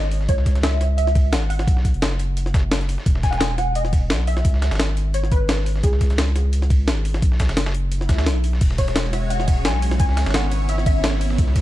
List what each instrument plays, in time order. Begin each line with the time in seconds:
Already playing: sub bass G#1, synth pluck D#5
0.03 snare
0.11 closed hi-hat, open hi-hat
0.21 snare
0.29 sub bass C#2, synth pluck C#5, kick, closed hi-hat
0.38 snare
0.46 kick, snare, closed hi-hat
0.55 snare, closed hi-hat
0.63 synth pluck E5, snare, closed hi-hat
0.73 closed hi-hat
0.81 snare, closed hi-hat
0.98 synth pluck E5, closed hi-hat
1.07 snare, closed hi-hat
1.15 kick, closed hi-hat, open hi-hat
1.33 sub bass G#1, synth pluck F#5, snare, closed hi-hat
1.50 synth pluck F#5, closed hi-hat, open hi-hat
1.59 snare
1.68 sub bass B1, kick, closed hi-hat
1.77 snare
1.85 kick, closed hi-hat
1.94 sub bass F#1, closed hi-hat
2.02 snare, closed hi-hat
2.11 snare
2.19 closed hi-hat
2.37 closed hi-hat
2.46 snare
2.54 sub bass F#1, kick, snare, closed hi-hat
2.71 snare, closed hi-hat
2.81 snare, closed hi-hat
2.89 closed hi-hat, open hi-hat
2.98 snare
3.06 sub bass E1, kick, closed hi-hat
3.15 snare
3.23 synth pluck G#5, kick, snare, closed hi-hat
3.31 synth pluck F#5, snare, closed hi-hat
3.38 synth pluck G#5, snare, closed hi-hat
3.50 closed hi-hat
3.58 synth pluck F#5, snare, closed hi-hat
3.75 synth pluck D#5, closed hi-hat
3.85 snare, closed hi-hat
3.93 kick, closed hi-hat, open hi-hat
4.10 sub bass B1, snare, closed hi-hat
4.27 synth pluck E5, closed hi-hat, open hi-hat
4.37 snare
4.45 sub bass C#2, kick, closed hi-hat
4.54 snare
4.62 snare, closed hi-hat
4.71 sub bass G#1, snare, closed hi-hat
4.75 snare, closed hi-hat
4.79 snare, closed hi-hat
4.89 snare
4.97 closed hi-hat
5.14 synth pluck C#5, closed hi-hat
5.23 snare
5.32 synth pluck B4, kick, closed hi-hat
5.49 snare, closed hi-hat
5.58 snare
5.66 closed hi-hat, open hi-hat
5.76 snare
5.83 sub bass C#2, synth pluck G#4, kick, closed hi-hat
5.93 snare
6.01 kick, snare, closed hi-hat
6.10 snare, closed hi-hat
6.18 snare, closed hi-hat
6.28 closed hi-hat
6.36 snare, closed hi-hat
6.53 closed hi-hat
6.62 snare, closed hi-hat
6.70 kick, closed hi-hat, open hi-hat
6.88 sub bass G#1, snare, closed hi-hat
7.05 closed hi-hat, open hi-hat
7.14 snare
7.22 sub bass B1, kick, closed hi-hat
7.32 snare
7.40 kick, snare, closed hi-hat
7.49 sub bass F#1, snare, closed hi-hat
7.57 snare, closed hi-hat
7.66 snare, closed hi-hat
7.75 closed hi-hat
7.92 closed hi-hat, swell
8.01 snare
8.09 sub bass D#2, kick, snare, closed hi-hat
8.18 snare, closed hi-hat
8.26 sub bass B1, snare, closed hi-hat
8.44 closed hi-hat, open hi-hat
8.53 snare
8.61 sub bass E1, analog synth pad G#3 C#4 F#4 C#5, kick, closed hi-hat, crash
8.70 snare
8.78 synth pluck C#5, kick, snare, closed hi-hat, ride
8.88 snare, closed hi-hat
8.96 snare, closed hi-hat
9.05 closed hi-hat
9.13 synth pluck E5, snare, closed hi-hat, ride
9.30 synth pluck F#5, closed hi-hat
9.40 snare, closed hi-hat
9.48 kick, closed hi-hat, open hi-hat, ride
9.65 sub bass B1, synth pluck G#5, snare, closed hi-hat
9.82 closed hi-hat, open hi-hat, ride
9.91 snare
10.00 sub bass C#2, analog synth pad B3 E4 C#5, synth pluck G#5, kick, closed hi-hat
10.09 snare
10.17 snare, closed hi-hat, ride
10.26 sub bass G#1, snare, closed hi-hat
10.30 snare, closed hi-hat
10.34 synth pluck F#5, snare, closed hi-hat
10.44 snare
10.52 closed hi-hat, ride
10.69 synth pluck E5, closed hi-hat
10.78 snare
10.86 synth pluck E5, kick, closed hi-hat, ride
11.04 snare, closed hi-hat
11.13 snare
11.21 closed hi-hat, open hi-hat, ride
11.30 snare
11.38 sub bass C#2, analog synth pad F#4 G#4 A4, kick, closed hi-hat
11.48 snare
11.56 kick, snare, closed hi-hat, ride